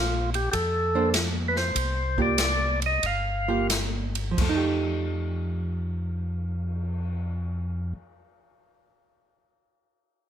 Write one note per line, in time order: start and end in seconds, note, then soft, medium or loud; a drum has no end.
0.00 0.49 A#1 medium
0.00 0.30 F4 medium
0.34 0.50 G4 medium
0.34 ride soft
0.52 1.72 F2 medium
0.52 0.55 G4 medium
0.52 1.10 A4 loud
0.52 kick soft
0.52 ride medium
0.95 1.12 A#3 medium
0.95 1.13 D4 medium
0.95 1.13 A4 medium
0.95 1.13 C5 medium
1.14 snare medium
1.14 hi-hat pedal medium
1.14 ride medium
1.48 1.57 B4 medium
1.56 2.21 C5 medium
1.56 snare soft
1.75 2.99 C2 medium
1.75 kick soft
1.75 ride medium
2.18 2.37 A#3 medium
2.18 2.37 F4 medium
2.18 2.37 G4 medium
2.18 kick soft
2.22 2.80 D5 medium
2.38 snare medium
2.38 hi-hat pedal medium
2.38 ride medium
2.82 ride soft
2.86 3.06 D#5 medium
3.03 4.35 G1 medium
3.03 3.67 F5 medium
3.03 kick soft
3.03 ride soft
3.48 3.68 A#3 medium
3.48 3.68 F4 medium
3.48 3.69 G4 medium
3.70 snare medium
3.70 hi-hat pedal medium
3.70 ride medium
4.15 ride soft
4.31 8.65 F3 medium
4.37 7.93 F2 medium
4.37 kick medium
4.37 crash medium
4.41 8.70 A3 medium
4.49 8.74 D#4 medium
4.57 8.77 G4 medium
4.85 cymbal swell soft